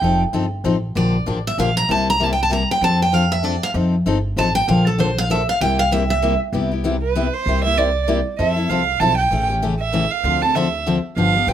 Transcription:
Already playing: steel-string acoustic guitar G5
0.02 upright bass F1, steel-string acoustic guitar F3 C4 D#4 A4
0.33 upright bass G1, steel-string acoustic guitar F3 C4 D#4 A4
0.64 upright bass A1, steel-string acoustic guitar F3 C4 D#4 A4
0.95 upright bass A#1, steel-string acoustic guitar D3 F3 A#3 D4 G4 D5
1.26 upright bass A1, steel-string acoustic guitar D3 F3 A#3 D4 G4
1.47 steel-string acoustic guitar E5
1.58 upright bass A#1, steel-string acoustic guitar D3 F3 A#3 D4 G4 F5
1.77 steel-string acoustic guitar A#5
1.89 upright bass C2, steel-string acoustic guitar C3 G3 A#3 E4 G4 A5
2.10 steel-string acoustic guitar A#5
2.20 steel-string acoustic guitar C3 G3 A#3 E4 G4 A5
2.33 steel-string acoustic guitar G5
2.43 steel-string acoustic guitar A5
2.50 steel-string acoustic guitar C3 G3 A#3 E4 G4 A#5
2.71 steel-string acoustic guitar G5
2.81 upright bass F2, steel-string acoustic guitar F3 C4 D4 A4 A5
3.02 steel-string acoustic guitar G5
3.12 steel-string acoustic guitar F3 C4 D4 A4 F5
3.32 steel-string acoustic guitar E5
3.43 steel-string acoustic guitar F3 C4 D4 A4 D5
3.63 steel-string acoustic guitar F5
3.74 upright bass F2, steel-string acoustic guitar F3 C4 D#4 A4
4.06 upright bass G1, steel-string acoustic guitar F3 C4 D#4 A4
4.36 upright bass A1, steel-string acoustic guitar F3 C4 D#4 A4 A5
4.55 steel-string acoustic guitar G5
4.68 upright bass A#1, steel-string acoustic guitar D3 F3 A#3 D4 A4 F5
4.87 steel-string acoustic guitar A4
4.98 steel-string acoustic guitar D3 F3 A#3 D4 A4 C5
5.18 steel-string acoustic guitar F5
5.30 steel-string acoustic guitar D3 F3 A#3 D4 A4 E5
5.49 steel-string acoustic guitar F5
5.61 upright bass C2, steel-string acoustic guitar C3 G3 A#3 E4 G4 G5
5.79 steel-string acoustic guitar F5
5.91 steel-string acoustic guitar C3 G3 A#3 E4 G4 E5
6.10 steel-string acoustic guitar E5
6.22 steel-string acoustic guitar C3 G3 A#3 E4 G4
6.53 upright bass C2, steel-string acoustic guitar C3 G3 B3 E4 G4
6.71 steel-string acoustic guitar B3 E4 G4
6.84 steel-string acoustic guitar C3 G3 B3 E4 G4
7.02 violin B4
7.15 steel-string acoustic guitar C3 G3 B3 E4 G4
7.34 violin C5
7.46 upright bass C2, steel-string acoustic guitar C3 G3 A#3 E4 G4
7.64 steel-string acoustic guitar A#3 E4 G4, violin E5
7.77 steel-string acoustic guitar C3 G3 A#3 E4 G4, violin D5
8.08 steel-string acoustic guitar C3 G3 A#3 E4 G4
8.39 upright bass F2, steel-string acoustic guitar F3 C4 E4 A4, violin E5
8.56 steel-string acoustic guitar C4 E4 A4
8.69 upright bass C2, steel-string acoustic guitar F3 C4 E4 A4, violin F5
8.99 upright bass B1, steel-string acoustic guitar F3 C4 E4 A4, violin A5
9.18 violin G5
9.31 upright bass A1, steel-string acoustic guitar C#3 E3 A3 C#4 G4
9.49 steel-string acoustic guitar A3 C#4 G4
9.62 steel-string acoustic guitar C#3 E3 A3 C#4 G4
9.80 violin E5
9.93 steel-string acoustic guitar C#3 E3 A3 C#4 G4
10.11 violin F5
10.24 upright bass D2, steel-string acoustic guitar D3 F3 C4 D4 A4
10.42 steel-string acoustic guitar C4 D4 A4, violin A5
10.55 steel-string acoustic guitar D3 F3 C4 D4 A4, violin E5
10.86 steel-string acoustic guitar D3 F3 C4 D4 A4
11.16 upright bass G1, steel-string acoustic guitar D3 F3 B3 D4 G4, violin F5
11.35 steel-string acoustic guitar B3 D4 G4
11.47 upright bass A1, steel-string acoustic guitar D3 F3 B3 D4 G4, violin G5

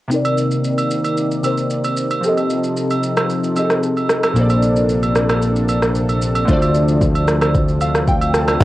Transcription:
0.08 synth keys C3 C4 D#4, analog synth pad C3 D#3 A#3 D5, shaker
0.14 synth keys A#4 D5
0.25 high agogo, shaker
0.38 shaker
0.51 shaker
0.64 shaker
0.78 high agogo, shaker
0.91 shaker
1.04 high agogo, shaker
1.17 shaker
1.31 shaker
1.43 synth keys C3 C4 D#4 A#4 C5, high agogo, shaker
1.58 shaker
1.70 shaker
1.84 high agogo, shaker
1.97 shaker
2.11 high agogo, shaker
2.21 analog synth pad C3 F3 D#4 A4, synth keys F3 C4 G4, shaker
2.26 synth keys A4 D#5
2.37 high agogo, shaker
2.50 shaker
2.64 shaker
2.77 shaker
2.91 high agogo, shaker
3.03 shaker
3.17 cross-stick, high agogo, shaker
3.30 shaker
3.44 shaker
3.55 synth keys F3 C4 G4 G#4 D#5, high agogo, shaker
3.64 synth keys A4
3.70 cross-stick, shaker
3.83 shaker
3.97 high agogo, shaker
4.09 cross-stick, shaker
4.23 cross-stick, high agogo, shaker
4.33 fingered electric bass A#1, synth keys A#2 A#3 A4, analog synth pad C3 A#3 D4, shaker
4.39 synth keys C5 D5
4.50 high agogo, shaker
4.62 shaker
4.76 shaker
4.89 shaker
5.03 high agogo, shaker
5.16 cross-stick, shaker
5.29 cross-stick, high agogo, shaker
5.42 shaker
5.56 shaker
5.69 high agogo, shaker
5.82 cross-stick, shaker
5.95 shaker
6.09 high agogo, shaker
6.22 shaker
6.35 high agogo, shaker
6.45 fingered electric bass D2, synth keys D3 A3 F4, analog synth pad F3, kick, shaker
6.51 synth keys C5 D5
6.62 high agogo, shaker
6.75 shaker
6.88 shaker
7.01 kick, shaker
7.15 high agogo, shaker
7.28 cross-stick, shaker
7.41 cross-stick, high agogo, shaker
7.55 kick, shaker
7.69 shaker
7.81 synth keys F5, high agogo, shaker
7.95 cross-stick, shaker
8.08 synth keys G5, kick, shaker
8.21 high agogo, shaker
8.34 synth keys A5, cross-stick, shaker
8.48 cross-stick, high agogo, shaker
8.61 log drum bass C2, kick, shaker

